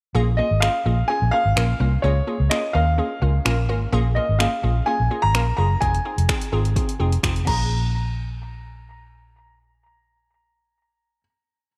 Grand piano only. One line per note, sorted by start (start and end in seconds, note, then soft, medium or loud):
0.37 0.62 D#5 medium
0.60 1.10 F5 medium
1.08 1.33 G#5 loud
1.31 2.05 F5 loud
2.02 2.52 C#5 medium
2.50 2.75 D#5 medium
2.73 3.64 F5 medium
4.15 4.40 D#5 medium
4.39 4.83 F5 medium
4.86 5.24 G#5 loud
5.22 5.55 A#5 loud
5.57 5.82 A#5 loud
5.81 7.42 G#5 medium
7.47 11.21 A#5 medium